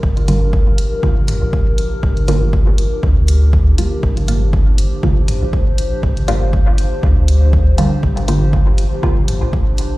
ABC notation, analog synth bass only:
X:1
M:4/4
L:1/16
Q:"Swing 16ths" 1/4=120
K:Gm
V:1 name="Analog synth bass" clef=bass
G,,,6- G,,, z4 B,,,4 z | G,,,6- G,,, z D,,6 z2 | G,,,6- G,,, z4 B,,,4 z | G,,,6- G,,, z D,,6 z2 |
G,,,6- G,,, z4 B,,,4 z |]